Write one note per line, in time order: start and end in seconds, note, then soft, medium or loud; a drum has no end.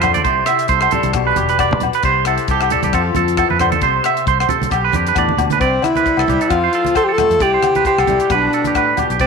0.00 0.25 F2 medium
0.00 0.25 D3 medium
0.00 0.48 C4 medium
0.00 0.23 F4 medium
0.00 0.70 A4 medium
0.00 0.13 C5 medium
0.00 cross-stick medium
0.00 closed hi-hat medium
0.00 low conga medium
0.00 low agogo medium
0.14 0.24 D5 medium
0.14 closed hi-hat medium
0.14 high conga medium
0.24 0.42 C2 medium
0.24 1.12 C3 medium
0.24 0.93 G4 medium
0.24 0.46 C5 medium
0.24 kick medium
0.24 closed hi-hat soft
0.46 1.13 E4 medium
0.46 0.68 E5 medium
0.46 cross-stick medium
0.46 closed hi-hat medium
0.46 low agogo medium
0.59 closed hi-hat medium
0.68 0.86 C2 medium
0.68 0.80 C5 medium
0.68 kick medium
0.68 closed hi-hat medium
0.72 1.16 A4 medium
0.81 0.91 C5 medium
0.81 cross-stick medium
0.81 low agogo medium
0.91 1.82 G3 medium
0.91 1.13 G4 medium
0.91 1.13 A4 medium
0.91 closed hi-hat soft
0.91 low conga medium
1.03 1.12 C2 medium
1.03 closed hi-hat medium
1.03 high conga medium
1.13 1.31 B1 loud
1.13 2.02 B2 medium
1.13 1.81 G4 medium
1.13 muted clean electric guitar stroke medium
1.13 kick medium
1.13 cross-stick medium
1.13 closed hi-hat soft
1.13 low agogo medium
1.27 1.36 B4 medium
1.36 1.73 E1 loud
1.36 1.49 G4 medium
1.36 muted steel-string acoustic guitar stroke medium
1.36 closed hi-hat medium
1.36 high conga medium
1.36 low conga medium
1.49 1.59 B4 medium
1.49 closed hi-hat soft
1.59 2.01 B4 medium
1.59 1.81 D5 medium
1.59 kick medium
1.59 cross-stick medium
1.59 closed hi-hat soft
1.59 low agogo medium
1.71 1.89 B1 medium
1.71 high conga medium
1.80 muted steel-string acoustic guitar stroke medium
1.80 closed hi-hat soft
1.80 low conga medium
1.80 low agogo medium
1.93 2.04 B4 medium
1.93 closed hi-hat medium
2.03 2.37 C2 medium
2.03 2.91 C3 medium
2.03 2.71 G4 medium
2.03 2.26 C5 medium
2.03 kick medium
2.03 closed hi-hat soft
2.25 2.91 E4 medium
2.25 2.48 A4 medium
2.25 cross-stick medium
2.25 closed hi-hat soft
2.25 low agogo medium
2.38 closed hi-hat soft
2.48 2.74 C2 medium
2.48 2.62 G4 loud
2.48 4.73 A4 medium
2.48 kick medium
2.48 closed hi-hat soft
2.61 2.71 G4 medium
2.61 cross-stick medium
2.61 low agogo medium
2.70 2.94 G3 medium
2.70 2.92 G4 medium
2.70 2.83 A4 medium
2.70 closed hi-hat soft
2.70 low conga medium
2.83 2.92 C2 medium
2.83 2.93 G4 medium
2.83 closed hi-hat medium
2.83 high conga medium
2.93 3.10 F2 loud
2.93 3.37 F3 medium
2.93 3.80 F4 medium
2.93 3.15 A4 medium
2.93 kick medium
2.93 cross-stick medium
2.93 closed hi-hat soft
2.93 low agogo medium
3.15 3.42 F2 medium
3.15 4.05 C4 medium
3.15 3.37 A4 medium
3.15 closed hi-hat medium
3.15 high conga medium
3.15 low conga medium
3.28 closed hi-hat soft
3.37 3.59 E3 medium
3.37 3.50 A4 medium
3.37 kick medium
3.37 cross-stick medium
3.37 closed hi-hat soft
3.37 low agogo medium
3.50 3.82 F2 medium
3.50 3.60 B4 medium
3.50 high conga medium
3.59 3.82 D3 medium
3.59 3.71 C5 medium
3.59 cross-stick medium
3.59 closed hi-hat medium
3.59 low conga medium
3.59 low agogo medium
3.72 3.82 A4 medium
3.72 closed hi-hat soft
3.72 high conga medium
3.81 3.99 C2 medium
3.81 4.47 C3 medium
3.81 4.69 G4 medium
3.81 4.04 C5 medium
3.81 kick medium
3.81 closed hi-hat medium
4.04 4.27 E5 medium
4.04 muted steel-string acoustic guitar stroke medium
4.04 cross-stick medium
4.04 closed hi-hat soft
4.04 low agogo medium
4.17 closed hi-hat medium
4.26 4.44 C2 medium
4.26 4.39 C5 medium
4.26 muted steel-string acoustic guitar stroke medium
4.26 kick medium
4.26 closed hi-hat soft
4.40 4.49 C5 medium
4.40 cross-stick medium
4.40 low agogo medium
4.48 4.69 C3 medium
4.48 4.71 A4 medium
4.48 closed hi-hat soft
4.48 high conga medium
4.48 low conga medium
4.61 4.69 C2 medium
4.61 closed hi-hat medium
4.61 high conga medium
4.70 4.89 B1 medium
4.70 5.58 G4 medium
4.70 4.83 G4 medium
4.70 muted steel-string acoustic guitar stroke medium
4.70 kick medium
4.70 cross-stick medium
4.70 closed hi-hat medium
4.70 low agogo medium
4.84 4.94 B4 medium
4.92 5.14 F2 medium
4.92 5.58 D4 medium
4.92 5.07 G4 medium
4.92 closed hi-hat medium
4.92 high conga medium
4.92 low conga medium
5.07 5.17 B4 medium
5.07 closed hi-hat medium
5.15 5.36 E2 medium
5.15 5.37 A2 medium
5.15 5.39 D5 medium
5.15 kick medium
5.15 cross-stick medium
5.15 closed hi-hat medium
5.15 low agogo medium
5.29 high conga medium
5.37 5.58 D2 medium
5.37 5.60 B2 medium
5.37 closed hi-hat medium
5.37 low conga medium
5.37 low agogo medium
5.50 5.61 B4 medium
5.50 closed hi-hat soft
5.50 high conga medium
5.60 5.78 C2 medium
5.60 6.48 C3 medium
5.60 5.86 C4 medium
5.60 6.48 C5 medium
5.60 5.82 D5 medium
5.60 kick medium
5.60 closed hi-hat soft
5.82 6.51 E4 medium
5.82 cross-stick medium
5.82 closed hi-hat soft
5.82 high conga medium
5.82 low agogo medium
5.96 6.17 B4 medium
5.96 closed hi-hat soft
5.96 high conga medium
6.06 6.27 G3 medium
6.06 kick medium
6.06 closed hi-hat soft
6.17 6.25 C2 medium
6.17 6.29 A4 medium
6.17 cross-stick medium
6.17 low agogo medium
6.28 6.37 C2 medium
6.28 6.51 G3 medium
6.28 6.41 G4 medium
6.28 kick soft
6.28 closed hi-hat soft
6.28 low conga medium
6.41 6.62 A4 medium
6.41 closed hi-hat soft
6.50 6.67 F2 medium
6.50 7.37 F3 medium
6.50 7.18 C4 medium
6.50 6.95 F4 medium
6.50 kick medium
6.50 cross-stick medium
6.50 closed hi-hat soft
6.50 low agogo medium
6.64 6.73 C5 medium
6.73 6.95 A4 medium
6.73 closed hi-hat soft
6.85 closed hi-hat soft
6.85 high conga medium
6.95 7.38 F4 medium
6.95 7.06 A4 medium
6.95 7.08 C5 medium
6.95 kick medium
6.95 cross-stick medium
6.95 closed hi-hat soft
6.95 low agogo medium
7.05 7.14 G4 medium
7.09 7.18 A4 medium
7.13 7.44 A4 loud
7.18 7.38 A3 medium
7.18 7.39 C4 medium
7.18 cross-stick medium
7.18 closed hi-hat soft
7.18 high conga medium
7.18 low conga medium
7.18 low agogo medium
7.30 7.40 F2 medium
7.30 closed hi-hat medium
7.39 7.57 C2 medium
7.39 8.27 C3 medium
7.39 7.83 E4 medium
7.39 7.86 G4 loud
7.39 7.53 D5 medium
7.39 kick medium
7.39 closed hi-hat medium
7.54 7.75 C5 medium
7.63 cross-stick medium
7.63 closed hi-hat soft
7.63 high conga medium
7.63 low agogo medium
7.75 7.85 B4 medium
7.75 closed hi-hat soft
7.75 high conga medium
7.84 8.07 E4 medium
7.84 8.36 G4 medium
7.84 7.97 C5 medium
7.84 kick medium
7.84 closed hi-hat soft
7.98 8.05 C2 medium
7.98 8.19 A4 medium
7.98 cross-stick medium
7.98 low agogo medium
8.07 8.17 C2 medium
8.07 9.27 G3 medium
8.07 8.28 E4 medium
8.07 kick medium
8.07 closed hi-hat soft
8.07 low conga medium
8.20 8.30 G4 medium
8.20 closed hi-hat medium
8.30 8.47 B1 loud
8.30 8.74 B2 medium
8.30 9.17 B4 medium
8.30 8.52 B4 medium
8.30 kick medium
8.30 cross-stick medium
8.30 closed hi-hat soft
8.30 low agogo soft
8.35 8.99 D4 medium
8.53 8.65 A4 medium
8.53 closed hi-hat soft
8.64 8.76 G4 medium
8.64 closed hi-hat medium
8.64 high conga medium
8.75 8.97 A2 medium
8.75 8.97 B4 medium
8.75 kick medium
8.75 cross-stick medium
8.75 closed hi-hat soft
8.75 low agogo medium
8.97 9.20 B2 medium
8.97 9.10 G4 medium
8.97 closed hi-hat soft
8.97 high conga soft
8.97 low conga medium
8.97 low agogo medium
9.10 9.19 B1 medium
9.10 9.20 G4 medium
9.10 closed hi-hat soft
9.19 9.27 C2 medium
9.19 9.27 C3 medium
9.19 9.27 C4 medium
9.19 9.27 C5 medium
9.19 9.27 D5 medium
9.19 kick medium
9.19 closed hi-hat soft